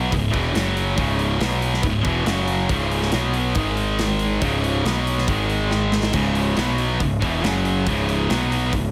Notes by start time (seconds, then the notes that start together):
Already playing: B2 F#3 B3
0.12 C#1 C#2 G#2, kick, open hi-hat
0.33 E1 E2 B2 E3, kick, open hi-hat
0.54 F#1 F#2 C#3 F#3, snare, open hi-hat
0.77 open hi-hat
0.97 C#1 C#2 G#2 C#3, kick, open hi-hat
1.19 open hi-hat
1.40 B1 B2 F#3 B3, snare, open hi-hat
1.62 open hi-hat
1.74 snare
1.83 C#1 C#2 G#2, kick, open hi-hat
2.05 E1 E2 B2 E3, kick, open hi-hat
2.26 F#1 F#2 C#3 F#3, snare, open hi-hat
2.48 open hi-hat
2.69 C#1 C#2 G#2 C#3, kick, open hi-hat
2.91 open hi-hat
3.02 snare
3.12 B1 B2 F#3 B3, snare, open hi-hat
3.34 open hi-hat
3.55 G#1 G#2 D#3 G#3, kick, open hi-hat
3.77 open hi-hat
3.99 snare, open hi-hat
4.19 open hi-hat
4.42 C#1 C#2 G#2 C#3, kick, open hi-hat
4.64 open hi-hat
4.85 B1 B2 F#3 B3, snare, open hi-hat
5.07 open hi-hat
5.18 snare
5.28 G#1 G#2 D#3 G#3, kick, open hi-hat
5.50 open hi-hat
5.71 snare
5.92 snare
6.03 snare
6.13 C#1 C#2 G#2 C#3, kick, open hi-hat, splash
6.35 open hi-hat
6.57 B1 B2 F#3 B3, snare, open hi-hat
6.78 open hi-hat
7.00 C#1 C#2 G#2, kick, open hi-hat
7.21 E1 E2 B2 E3, kick, open hi-hat
7.42 F#1 F#2 C#3 F#3, snare, open hi-hat
7.65 open hi-hat
7.86 C#1 C#2 G#2 C#3, kick, open hi-hat
8.09 open hi-hat
8.29 B1 B2 F#3 B3, snare, open hi-hat
8.52 open hi-hat
8.73 C#1 C#2 G#2, kick, open hi-hat